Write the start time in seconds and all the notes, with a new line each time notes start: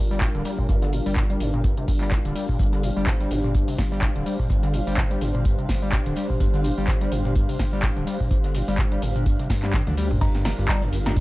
Already playing: G1 G3 D4 F4 G4 A#4 F5
0.11 G3, snare
0.21 G2, kick, snare, clap, closed hi-hat
0.35 D1 D3, closed hi-hat
0.45 G3, closed hi-hat, open hi-hat
0.59 A#2, kick
0.69 G1 G2, kick, closed hi-hat
0.82 D3, snare, closed hi-hat
0.93 A2, closed hi-hat, open hi-hat
1.06 G1 G3, open hi-hat
1.16 G2, kick, snare, clap, closed hi-hat
1.30 G3, closed hi-hat
1.40 G1 G2, closed hi-hat, open hi-hat
1.54 A#2, closed hi-hat
1.64 G2, kick, closed hi-hat
1.78 C3, closed hi-hat
1.88 G1 G2, kick, closed hi-hat, open hi-hat
2.01 G3, clap
2.11 G2, kick, snare, clap, closed hi-hat
2.25 D1 D3, closed hi-hat
2.35 G3, closed hi-hat, open hi-hat
2.49 A#2, kick
2.59 G1 G2 G4 C5, kick, closed hi-hat
2.73 D3, snare, closed hi-hat
2.82 A2, snare, closed hi-hat, open hi-hat
2.97 G1 G3
3.06 G2, kick, snare, clap, closed hi-hat
3.20 G3, snare, closed hi-hat
3.31 G1 G2, closed hi-hat, open hi-hat
3.44 A#2, snare, closed hi-hat
3.55 G2, kick, closed hi-hat
3.68 C3, closed hi-hat, open hi-hat
3.78 G1 G2, kick, snare, closed hi-hat, open hi-hat
3.92 G3, snare
4.02 G2, kick, snare, clap, closed hi-hat
4.16 D1 D3, closed hi-hat
4.26 G3, closed hi-hat, open hi-hat
4.40 A#2, kick
4.50 G1 G2, kick, closed hi-hat
4.63 D3, snare, closed hi-hat
4.74 A2, closed hi-hat, open hi-hat
4.87 G1 G3, open hi-hat
4.97 G2, kick, snare, clap, closed hi-hat
5.11 G3, closed hi-hat
5.21 G1 G2, closed hi-hat, open hi-hat
5.35 A#2, closed hi-hat
5.45 G2, kick, closed hi-hat
5.58 C3, closed hi-hat
5.69 G1 G2, kick, snare, closed hi-hat, open hi-hat
5.82 G3
5.92 G2, kick, snare, clap, closed hi-hat
6.06 D1 D3, closed hi-hat
6.16 G3, closed hi-hat, open hi-hat
6.30 A#2, kick
6.40 G1 G2, kick, closed hi-hat
6.54 D3, snare, closed hi-hat
6.64 A2, snare, closed hi-hat, open hi-hat
6.78 G1 G3
6.88 G2, kick, snare, clap, closed hi-hat
7.01 G3, snare, closed hi-hat
7.12 G1 G2, closed hi-hat, open hi-hat
7.25 A#2, snare, closed hi-hat
7.35 G2, kick, closed hi-hat
7.49 C3, closed hi-hat, open hi-hat
7.59 G1 G2, kick, snare, closed hi-hat, open hi-hat
7.73 G3, snare
7.83 G2, kick, snare, clap, closed hi-hat
7.96 D1 D3, closed hi-hat
8.07 G3, closed hi-hat, open hi-hat
8.20 A#2, kick
8.31 G1 G2, kick, closed hi-hat
8.44 D3, snare, closed hi-hat
8.55 A2, snare, closed hi-hat, open hi-hat
8.68 G1 G3, snare, open hi-hat
8.78 G2, kick, clap, closed hi-hat
8.91 G3, snare, closed hi-hat
9.02 G1 G2, closed hi-hat, open hi-hat
9.16 A#2, closed hi-hat
9.26 G2, kick, closed hi-hat
9.39 C3, snare, closed hi-hat
9.50 G2, kick, snare, closed hi-hat, open hi-hat
9.63 G3, snare, clap, closed hi-hat
9.73 G2, kick, snare, clap, closed hi-hat, high tom
9.87 D2 D3, snare, closed hi-hat, high tom
9.97 G3, snare, closed hi-hat, open hi-hat
10.11 A#2, kick, mid tom
10.21 G1 G2 G3 D4 F4 A#4, kick, closed hi-hat, crash, cowbell
10.35 G2, snare, closed hi-hat
10.45 G3, snare, closed hi-hat, open hi-hat, cowbell
10.58 G1 G2
10.68 G3, kick, snare, clap, closed hi-hat, cowbell
10.82 F2, snare, closed hi-hat
10.93 G1 G2, closed hi-hat, open hi-hat
11.06 G2, snare, closed hi-hat, cowbell
11.17 A#2, kick, closed hi-hat